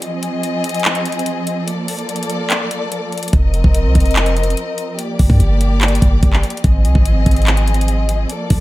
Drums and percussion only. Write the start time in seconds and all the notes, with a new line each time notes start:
0.02 closed hi-hat
0.23 closed hi-hat
0.43 closed hi-hat
0.64 closed hi-hat
0.69 closed hi-hat
0.74 closed hi-hat
0.80 closed hi-hat
0.85 clap, closed hi-hat
0.95 closed hi-hat
1.05 closed hi-hat
1.12 closed hi-hat
1.19 closed hi-hat
1.26 closed hi-hat
1.47 closed hi-hat
1.68 closed hi-hat
1.88 closed hi-hat, open hi-hat
1.99 closed hi-hat
2.09 closed hi-hat
2.16 closed hi-hat
2.23 closed hi-hat
2.30 closed hi-hat
2.50 clap, closed hi-hat
2.71 closed hi-hat
2.92 closed hi-hat
3.12 closed hi-hat
3.18 closed hi-hat
3.23 closed hi-hat
3.28 closed hi-hat
3.33 kick, closed hi-hat
3.54 closed hi-hat
3.64 kick
3.74 closed hi-hat
3.95 kick, closed hi-hat
4.00 closed hi-hat
4.06 closed hi-hat
4.11 closed hi-hat
4.16 clap, closed hi-hat
4.26 closed hi-hat
4.37 closed hi-hat
4.43 closed hi-hat
4.50 closed hi-hat
4.57 closed hi-hat
4.78 closed hi-hat
4.99 closed hi-hat
5.19 kick, open hi-hat
5.30 kick
5.40 closed hi-hat
5.61 closed hi-hat
5.81 clap, closed hi-hat
5.88 closed hi-hat
5.95 closed hi-hat
6.02 kick, closed hi-hat
6.23 kick, closed hi-hat
6.33 clap
6.43 closed hi-hat
6.50 closed hi-hat
6.57 closed hi-hat
6.64 kick, closed hi-hat
6.85 closed hi-hat
6.95 kick
7.05 closed hi-hat
7.26 kick, closed hi-hat
7.31 closed hi-hat
7.36 closed hi-hat
7.42 closed hi-hat
7.47 clap, closed hi-hat
7.57 closed hi-hat
7.68 closed hi-hat
7.74 closed hi-hat
7.81 closed hi-hat
7.88 closed hi-hat
8.09 closed hi-hat
8.30 closed hi-hat
8.50 kick, closed hi-hat, open hi-hat